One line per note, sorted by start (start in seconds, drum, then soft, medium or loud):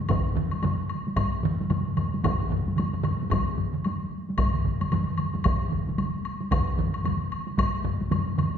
0.09 taiko loud
0.09 taiko low-mid loud
0.09 taiko mid medium
0.09 taiko high medium
0.09 high woodblock soft
0.36 taiko low-mid medium
0.36 taiko mid loud
0.51 taiko high soft
0.51 high woodblock soft
0.62 taiko low-mid medium
0.62 taiko mid medium
0.62 taiko high medium
0.62 high woodblock soft
0.90 high woodblock soft
1.07 taiko high medium
1.16 taiko medium
1.16 taiko high medium
1.16 high woodblock medium
1.43 taiko low-mid medium
1.43 taiko mid loud
1.60 taiko high medium
1.70 taiko low-mid loud
1.70 taiko mid medium
1.70 taiko high medium
1.70 high woodblock soft
1.97 taiko low-mid loud
1.97 taiko mid medium
1.97 high woodblock soft
2.14 taiko high medium
2.24 taiko loud
2.24 taiko low-mid loud
2.24 taiko mid medium
2.24 taiko high medium
2.24 high woodblock medium
2.50 taiko low-mid medium
2.50 taiko mid loud
2.68 taiko high medium
2.77 taiko low-mid medium
2.77 taiko mid medium
2.77 taiko high medium
2.77 high woodblock soft
2.93 taiko low-mid medium
2.93 taiko mid medium
3.03 taiko low-mid loud
3.03 taiko mid loud
3.03 high woodblock soft
3.23 taiko high medium
3.30 taiko medium
3.30 taiko low-mid medium
3.30 taiko mid medium
3.30 taiko high medium
3.30 high woodblock medium
3.57 taiko low-mid medium
3.57 taiko mid medium
3.73 taiko low-mid medium
3.73 taiko mid medium
3.85 taiko high medium
3.85 high woodblock soft
4.29 taiko high soft
4.38 taiko medium
4.38 taiko low-mid medium
4.38 taiko mid medium
4.38 taiko high medium
4.38 high woodblock medium
4.54 taiko low-mid medium
4.54 taiko mid medium
4.65 taiko low-mid medium
4.65 taiko mid medium
4.81 taiko low-mid medium
4.81 taiko mid medium
4.81 taiko high soft
4.81 high woodblock soft
4.92 taiko low-mid medium
4.92 taiko mid medium
4.92 taiko high medium
4.92 high woodblock soft
5.18 taiko low-mid medium
5.18 taiko mid medium
5.18 taiko high soft
5.18 high woodblock soft
5.34 taiko low-mid medium
5.34 taiko mid medium
5.34 taiko high medium
5.44 taiko medium
5.44 taiko low-mid medium
5.44 taiko mid medium
5.44 taiko high medium
5.44 high woodblock medium
5.71 taiko low-mid medium
5.71 taiko mid medium
5.88 taiko low-mid medium
5.88 taiko mid medium
5.88 taiko high soft
5.98 taiko high medium
5.98 high woodblock soft
6.25 high woodblock soft
6.40 taiko high medium
6.51 taiko loud
6.51 taiko low-mid medium
6.51 taiko mid loud
6.51 taiko high medium
6.51 high woodblock medium
6.78 taiko low-mid medium
6.78 taiko mid medium
6.94 high woodblock soft
7.05 taiko low-mid medium
7.05 taiko mid medium
7.05 taiko high medium
7.05 high woodblock soft
7.32 high woodblock soft
7.47 taiko high medium
7.58 taiko medium
7.58 taiko high medium
7.58 high woodblock medium
7.85 taiko low-mid medium
7.85 taiko mid loud
8.01 taiko high medium
8.11 taiko low-mid loud
8.11 taiko mid medium
8.11 taiko high medium
8.11 high woodblock soft
8.38 taiko low-mid medium
8.38 taiko mid medium
8.38 high woodblock soft
8.55 taiko high medium